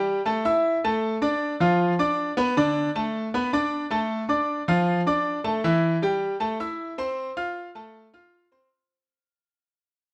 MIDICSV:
0, 0, Header, 1, 2, 480
1, 0, Start_track
1, 0, Key_signature, 0, "minor"
1, 0, Tempo, 383877
1, 1289, Time_signature, 4, 2, 24, 8
1, 12669, End_track
2, 0, Start_track
2, 0, Title_t, "Grand piano"
2, 0, Program_c, 0, 0
2, 0, Note_on_c, 0, 55, 79
2, 0, Note_on_c, 0, 67, 78
2, 0, Note_on_c, 0, 79, 75
2, 233, Note_off_c, 0, 55, 0
2, 236, Note_off_c, 0, 67, 0
2, 237, Note_off_c, 0, 79, 0
2, 318, Note_on_c, 0, 57, 76
2, 321, Note_on_c, 0, 69, 77
2, 327, Note_on_c, 0, 81, 71
2, 519, Note_off_c, 0, 57, 0
2, 521, Note_off_c, 0, 69, 0
2, 525, Note_off_c, 0, 81, 0
2, 564, Note_on_c, 0, 64, 83
2, 565, Note_on_c, 0, 76, 77
2, 569, Note_on_c, 0, 88, 71
2, 959, Note_off_c, 0, 64, 0
2, 960, Note_off_c, 0, 76, 0
2, 963, Note_off_c, 0, 88, 0
2, 1055, Note_on_c, 0, 69, 79
2, 1056, Note_on_c, 0, 57, 78
2, 1059, Note_on_c, 0, 81, 83
2, 1446, Note_off_c, 0, 69, 0
2, 1447, Note_off_c, 0, 57, 0
2, 1449, Note_off_c, 0, 81, 0
2, 1521, Note_on_c, 0, 62, 79
2, 1526, Note_on_c, 0, 74, 78
2, 1527, Note_on_c, 0, 86, 78
2, 1918, Note_off_c, 0, 62, 0
2, 1921, Note_off_c, 0, 74, 0
2, 1922, Note_off_c, 0, 86, 0
2, 2005, Note_on_c, 0, 53, 71
2, 2010, Note_on_c, 0, 65, 82
2, 2013, Note_on_c, 0, 77, 75
2, 2400, Note_off_c, 0, 53, 0
2, 2403, Note_off_c, 0, 65, 0
2, 2405, Note_off_c, 0, 77, 0
2, 2489, Note_on_c, 0, 62, 73
2, 2492, Note_on_c, 0, 74, 82
2, 2496, Note_on_c, 0, 86, 78
2, 2883, Note_off_c, 0, 62, 0
2, 2885, Note_off_c, 0, 74, 0
2, 2887, Note_off_c, 0, 86, 0
2, 2964, Note_on_c, 0, 59, 85
2, 2970, Note_on_c, 0, 71, 87
2, 2970, Note_on_c, 0, 83, 85
2, 3163, Note_off_c, 0, 59, 0
2, 3167, Note_off_c, 0, 71, 0
2, 3167, Note_off_c, 0, 83, 0
2, 3211, Note_on_c, 0, 50, 83
2, 3217, Note_on_c, 0, 62, 91
2, 3218, Note_on_c, 0, 74, 89
2, 3604, Note_off_c, 0, 50, 0
2, 3608, Note_off_c, 0, 62, 0
2, 3608, Note_off_c, 0, 74, 0
2, 3694, Note_on_c, 0, 57, 75
2, 3695, Note_on_c, 0, 69, 72
2, 3699, Note_on_c, 0, 81, 79
2, 4086, Note_off_c, 0, 57, 0
2, 4086, Note_off_c, 0, 69, 0
2, 4089, Note_off_c, 0, 81, 0
2, 4178, Note_on_c, 0, 59, 81
2, 4180, Note_on_c, 0, 71, 72
2, 4184, Note_on_c, 0, 83, 80
2, 4371, Note_off_c, 0, 59, 0
2, 4373, Note_off_c, 0, 71, 0
2, 4375, Note_off_c, 0, 83, 0
2, 4415, Note_on_c, 0, 62, 82
2, 4416, Note_on_c, 0, 74, 75
2, 4421, Note_on_c, 0, 86, 81
2, 4806, Note_off_c, 0, 62, 0
2, 4807, Note_off_c, 0, 74, 0
2, 4810, Note_off_c, 0, 86, 0
2, 4883, Note_on_c, 0, 57, 77
2, 4889, Note_on_c, 0, 69, 82
2, 4893, Note_on_c, 0, 81, 73
2, 5279, Note_off_c, 0, 57, 0
2, 5283, Note_off_c, 0, 69, 0
2, 5285, Note_off_c, 0, 81, 0
2, 5360, Note_on_c, 0, 62, 71
2, 5366, Note_on_c, 0, 86, 69
2, 5369, Note_on_c, 0, 74, 76
2, 5757, Note_off_c, 0, 62, 0
2, 5761, Note_off_c, 0, 86, 0
2, 5763, Note_off_c, 0, 74, 0
2, 5852, Note_on_c, 0, 65, 78
2, 5853, Note_on_c, 0, 53, 76
2, 5858, Note_on_c, 0, 77, 84
2, 6244, Note_off_c, 0, 65, 0
2, 6245, Note_off_c, 0, 53, 0
2, 6248, Note_off_c, 0, 77, 0
2, 6334, Note_on_c, 0, 62, 72
2, 6339, Note_on_c, 0, 74, 73
2, 6343, Note_on_c, 0, 86, 77
2, 6726, Note_off_c, 0, 62, 0
2, 6728, Note_off_c, 0, 74, 0
2, 6731, Note_off_c, 0, 86, 0
2, 6805, Note_on_c, 0, 69, 69
2, 6806, Note_on_c, 0, 57, 74
2, 6809, Note_on_c, 0, 81, 79
2, 7004, Note_off_c, 0, 57, 0
2, 7004, Note_off_c, 0, 69, 0
2, 7006, Note_off_c, 0, 81, 0
2, 7054, Note_on_c, 0, 52, 86
2, 7055, Note_on_c, 0, 64, 81
2, 7057, Note_on_c, 0, 76, 86
2, 7445, Note_off_c, 0, 52, 0
2, 7446, Note_off_c, 0, 64, 0
2, 7448, Note_off_c, 0, 76, 0
2, 7531, Note_on_c, 0, 55, 77
2, 7537, Note_on_c, 0, 67, 80
2, 7540, Note_on_c, 0, 79, 76
2, 7924, Note_off_c, 0, 55, 0
2, 7927, Note_off_c, 0, 67, 0
2, 7929, Note_off_c, 0, 79, 0
2, 8003, Note_on_c, 0, 57, 82
2, 8007, Note_on_c, 0, 69, 77
2, 8009, Note_on_c, 0, 81, 80
2, 8202, Note_off_c, 0, 57, 0
2, 8205, Note_off_c, 0, 69, 0
2, 8206, Note_off_c, 0, 81, 0
2, 8251, Note_on_c, 0, 64, 81
2, 8255, Note_on_c, 0, 76, 81
2, 8258, Note_on_c, 0, 88, 80
2, 8644, Note_off_c, 0, 64, 0
2, 8646, Note_off_c, 0, 76, 0
2, 8648, Note_off_c, 0, 88, 0
2, 8729, Note_on_c, 0, 60, 74
2, 8731, Note_on_c, 0, 72, 80
2, 8735, Note_on_c, 0, 84, 85
2, 9123, Note_off_c, 0, 60, 0
2, 9124, Note_off_c, 0, 72, 0
2, 9126, Note_off_c, 0, 84, 0
2, 9213, Note_on_c, 0, 65, 87
2, 9214, Note_on_c, 0, 89, 81
2, 9216, Note_on_c, 0, 77, 80
2, 9605, Note_off_c, 0, 65, 0
2, 9606, Note_off_c, 0, 89, 0
2, 9607, Note_off_c, 0, 77, 0
2, 9691, Note_on_c, 0, 57, 81
2, 9696, Note_on_c, 0, 69, 80
2, 9699, Note_on_c, 0, 81, 76
2, 10084, Note_off_c, 0, 57, 0
2, 10087, Note_off_c, 0, 69, 0
2, 10089, Note_off_c, 0, 81, 0
2, 10173, Note_on_c, 0, 65, 80
2, 10177, Note_on_c, 0, 77, 74
2, 10177, Note_on_c, 0, 89, 85
2, 10565, Note_off_c, 0, 65, 0
2, 10567, Note_off_c, 0, 77, 0
2, 10567, Note_off_c, 0, 89, 0
2, 10648, Note_on_c, 0, 60, 71
2, 10652, Note_on_c, 0, 72, 85
2, 10658, Note_on_c, 0, 84, 71
2, 10846, Note_off_c, 0, 60, 0
2, 10848, Note_off_c, 0, 72, 0
2, 10851, Note_off_c, 0, 84, 0
2, 12669, End_track
0, 0, End_of_file